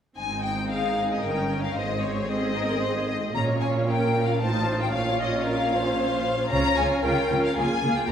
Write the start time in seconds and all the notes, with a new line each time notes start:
0.17 G#1 G#2 C4 D#4 G#5
0.43 G5
0.70 G#4 F5
1.12 D#5
1.24 G1 G2 C#4 A#4 G5
1.64 F5
1.77 G#1 G#2 C4 G#4 C5 D#5
2.03 C#5
2.29 C5 D#5
2.58 A#4
2.82 C5
3.09 D#5
3.35 A#1 A#2 C#4 F4 C#5 A#5
3.61 G#5
3.89 A#4 G5
4.28 F5
4.42 A1 A2 D#4 C5 A5
4.82 G5
4.94 A#1 A#2 C#4 C#5 F5
5.21 D#5
5.46 A#4 F5
5.72 C5
6.51 C#2 C#3 C#4 F4 C#5 A#5
6.77 C#2 C#3 C#4 F4 G#5
7.03 C#2 C#3 C#4 F4 A#4 G5
7.30 C#2 C#3 C#4 F4
7.45 F5
7.56 C#2 C#3 A#3 F4 G#4 G#5
7.83 C#2 C#3 A#3 F4
7.96 G5
8.08 D#2 G4